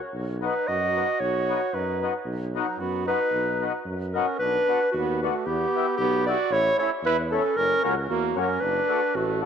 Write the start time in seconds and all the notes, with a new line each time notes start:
0.13 B1
0.41 B3 D#4 F#4 B4
0.67 F#2 F#4 D#5
0.95 B3 D#4 F#4
1.19 B1 F#4 C#5
1.49 B3 D#4 F#4
1.74 F#2 D#4 B4
2.02 B3 D#4 F#4
2.25 B1
2.54 F#3 B3 D#4 F#4
2.79 F#2 B3 F#4
3.06 B3 D#4 F#4 B4
3.31 B1
3.61 B3 D#4 F#4
3.85 F#2
4.13 B3 C#4 D#4 F#4 A#4
4.39 B1 D4 B4
4.67 B3 D4 F#4
4.92 D#2 B3 F#4
5.22 A3 B3 D4 F#4
5.45 E2 B3 G4
5.75 B3 E4 G4
5.97 B1 B3 G4
6.25 B3 E4 F#4 G4 D5
6.51 A1 E4 C#5
6.78 A3 C#4 E4 C#5
7.03 E2 E4 B4
7.30 A3 C#4 E4 A4
7.56 F#1 C#4 A#4
7.82 C#2 A#3 C#4 F#4 A#4
8.09 E2 A#3 F#4
8.35 F#2 A#3 C#4 F#4
8.40 A#4
8.60 F#1 D4 B4
8.88 A3 D4 F#4
9.15 A1 A3 F#4
9.42 A3 D4